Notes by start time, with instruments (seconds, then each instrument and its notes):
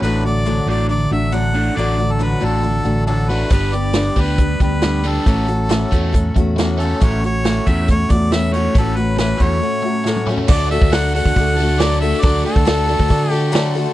0.02 fingered electric bass A1, steel-string acoustic guitar A2 D3 F#3 A3 D4 F#4, harmonica B4
0.23 overdriven electric guitar A2 D3, steel-string acoustic guitar A3 D4 F#4, harmonica D5
0.27 steel-string acoustic guitar F#3
0.46 steel-string acoustic guitar A2 D3 F#3 A3 D4 F#4
0.66 fingered electric bass A1, overdriven electric guitar A2 D3, steel-string acoustic guitar A3 D4 F#4, harmonica D5
0.70 steel-string acoustic guitar F#3
0.89 overdriven electric guitar A2 D3, steel-string acoustic guitar F#3 A3 D4 F#4, harmonica D5
1.11 fingered electric bass A1, overdriven electric guitar A2 D3, steel-string acoustic guitar F#3 A3 D4 F#4, harmonica E5
1.32 steel-string acoustic guitar A2 D3 F#3 A3 D4 F#4, harmonica F#5
1.54 overdriven electric guitar A2 D3, steel-string acoustic guitar F#3 A3 D4 F#4
1.77 fingered electric bass A1, steel-string acoustic guitar A2 D3 F#3 A3 D4 F#4, harmonica D5
1.98 overdriven electric guitar A2 D3, steel-string acoustic guitar F#3 A3 D4 F#4
2.12 harmonica A4
2.19 steel-string acoustic guitar A2 D3 F#3 A3 D4 F#4, harmonica B4
2.41 fingered electric bass A1, overdriven electric guitar A2 D3, steel-string acoustic guitar F#3 A3 D4 F#4, harmonica A4
2.63 overdriven electric guitar A2 D3, steel-string acoustic guitar F#3 A3 D4 F#4
2.83 fingered electric bass A1, overdriven electric guitar A2 D3, steel-string acoustic guitar F#3 A3 D4 F#4
3.06 steel-string acoustic guitar A2 D3 F#3 A3 D4 F#4, harmonica A4
3.29 overdriven electric guitar A2 D3, steel-string acoustic guitar F#3 A3 D4 F#4, harmonica B4
3.50 fingered electric bass G1, steel-string acoustic guitar G2 D3 G3 B3 D4 G4, harmonica B4, kick, closed hi-hat
3.73 steel-string acoustic guitar G3 B3 D4 G4, harmonica D5, closed hi-hat
3.93 steel-string acoustic guitar G2 D3 G3 B3 D4 G4, snare, closed hi-hat
4.16 fingered electric bass D2, steel-string acoustic guitar G3 B3 D4 G4, kick, closed hi-hat
4.20 harmonica B4
4.38 steel-string acoustic guitar G3 B3 D4 G4, kick, closed hi-hat
4.60 fingered electric bass D2, steel-string acoustic guitar G3 B3 D4 G4, harmonica B4, kick, closed hi-hat
4.82 steel-string acoustic guitar G2 D3 G3 B3 D4 G4, snare, closed hi-hat
5.04 steel-string acoustic guitar G3 B3 D4 G4, closed hi-hat
5.08 harmonica A4
5.26 fingered electric bass A1, steel-string acoustic guitar A2 E3 F#3 A3 C#4 F#4, kick, closed hi-hat
5.48 overdriven electric guitar A2, steel-string acoustic guitar F#3 A3 C#4 F#4, closed hi-hat
5.69 steel-string acoustic guitar A2 E3 F#3 A3 C#4 F#4, snare, closed hi-hat
5.91 fingered electric bass E2, overdriven electric guitar A2, steel-string acoustic guitar F#3 A3 C#4 F#4, kick, closed hi-hat
6.13 overdriven electric guitar A2, steel-string acoustic guitar F#3 A3 C#4 F#4, kick, closed hi-hat
6.35 fingered electric bass E2, overdriven electric guitar A2, steel-string acoustic guitar C#4 F#4, kick, closed hi-hat
6.39 steel-string acoustic guitar F#3 A3
6.58 steel-string acoustic guitar A2 E3 F#3 A3 C#4 F#4, snare, closed hi-hat
6.78 overdriven electric guitar A2 A3, steel-string acoustic guitar C#4 F#4, harmonica A4, closed hi-hat
6.82 steel-string acoustic guitar F#3 A3
7.00 fingered electric bass A1, steel-string acoustic guitar A2 E3 F#3 A3 C#4 F#4, harmonica C#5, kick, closed hi-hat
7.22 overdriven electric guitar A2 A3, steel-string acoustic guitar C#4 F#4, closed hi-hat
7.26 steel-string acoustic guitar F#3 A3, harmonica C#5
7.45 steel-string acoustic guitar A2 E3 F#3 A3 C#4 F#4, snare, closed hi-hat
7.66 fingered electric bass E2, overdriven electric guitar A2, steel-string acoustic guitar F#3 A3 C#4 F#4, harmonica E5, kick, closed hi-hat
7.88 overdriven electric guitar A2, steel-string acoustic guitar F#3 A3, harmonica C#5, kick, closed hi-hat
7.92 steel-string acoustic guitar C#4 F#4
8.09 fingered electric bass E2, overdriven electric guitar A2, steel-string acoustic guitar C#4 F#4, harmonica D5, kick, closed hi-hat
8.14 steel-string acoustic guitar F#3 A3
8.32 steel-string acoustic guitar A2 E3 F#3 A3 C#4 F#4, harmonica E5, snare, closed hi-hat
8.52 overdriven electric guitar A2, steel-string acoustic guitar C#4 F#4, harmonica C#5, closed hi-hat
8.56 steel-string acoustic guitar F#3 A3
8.74 fingered electric bass A1, overdriven electric guitar A2 C#4, kick, closed hi-hat
8.78 steel-string acoustic guitar A2 E3 F#3 A3 C#4 F#4, harmonica A4
8.95 overdriven electric guitar A2, steel-string acoustic guitar C#4 F#4, harmonica B4, closed hi-hat
8.99 steel-string acoustic guitar F#3 A3
9.18 steel-string acoustic guitar A2 E3 F#3 A3 C#4 F#4, harmonica B4, snare, closed hi-hat
9.37 fingered electric bass E2, overdriven electric guitar A2, steel-string acoustic guitar C#4 F#4, kick, closed hi-hat
9.42 steel-string acoustic guitar F#3 A3, harmonica C#5
9.60 overdriven electric guitar A2, steel-string acoustic guitar F#3 A3 C#4 F#4
9.82 overdriven electric guitar A2 A3, steel-string acoustic guitar F#4
9.87 steel-string acoustic guitar F#3 A3 C#4
10.04 steel-string acoustic guitar A2 E3 F#3 C#4, overdriven electric guitar A3, snare
10.08 steel-string acoustic guitar A3 F#4
10.16 high tom
10.27 overdriven electric guitar A2, steel-string acoustic guitar C#4 F#4, mid tom
10.31 steel-string acoustic guitar F#3 A3
10.37 floor tom
10.48 fingered electric bass D2, steel-string acoustic guitar D3 F#3 A3 F#4 A4, grand piano D4 F#4 A4 D5, overdriven electric guitar D4, harmonica D5, kick, crash
10.70 steel-string acoustic guitar A3 F#4 A4, overdriven electric guitar D4, harmonica E5, open hi-hat
10.82 fingered electric bass D2, kick
10.91 steel-string acoustic guitar D3 F#3 A3 F#4 A4, grand piano D4 F#4 A4 D5, overdriven electric guitar D4, harmonica F#5, snare, open hi-hat
11.12 overdriven electric guitar D4 A4, grand piano D4 F#4 A4 D5, harmonica F#5, open hi-hat
11.16 steel-string acoustic guitar A3 F#4 A4
11.25 fingered electric bass D2, kick
11.35 fingered electric bass D2, steel-string acoustic guitar F#3 A3 F#4, grand piano D4 F#4 A4 D5, kick, open hi-hat
11.40 steel-string acoustic guitar A4
11.58 overdriven electric guitar D4, steel-string acoustic guitar F#4 A4, open hi-hat
11.62 steel-string acoustic guitar A3
11.79 steel-string acoustic guitar D3 F#3 A3 F#4 A4, overdriven electric guitar D4, grand piano D4 F#4 A4 D5, harmonica D5, snare, open hi-hat
12.01 steel-string acoustic guitar A3 F#4 A4, harmonica E5, open hi-hat
12.13 snare
12.22 fingered electric bass D2, steel-string acoustic guitar D3 F#3 A3 F#4 A4, overdriven electric guitar D4, grand piano D4 F#4 A4 D5, harmonica D5, kick, open hi-hat
12.44 steel-string acoustic guitar A3 F#4 A4, overdriven electric guitar D4, harmonica A4, open hi-hat
12.56 fingered electric bass D2, kick
12.65 steel-string acoustic guitar D3 F#3 A3 F#4 A4, overdriven electric guitar D4, grand piano D4 F#4 A4 D5, snare, open hi-hat
12.86 steel-string acoustic guitar A3 F#4 A4, grand piano D4 F#4 A4 D5, open hi-hat
12.93 overdriven electric guitar D4
12.99 fingered electric bass D2, kick
13.08 fingered electric bass D3, steel-string acoustic guitar F#3 A3 F#4 A4, grand piano D4 F#4 A4 D5, kick, open hi-hat
13.30 steel-string acoustic guitar A3 F#4 A4, harmonica G4, open hi-hat
13.35 overdriven electric guitar D4
13.52 steel-string acoustic guitar D3 F#3 A3 F#4 A4, grand piano D4 F#4 A4, snare, open hi-hat
13.56 overdriven electric guitar D4 A4, grand piano D5
13.75 steel-string acoustic guitar A3 F#4 A4, open hi-hat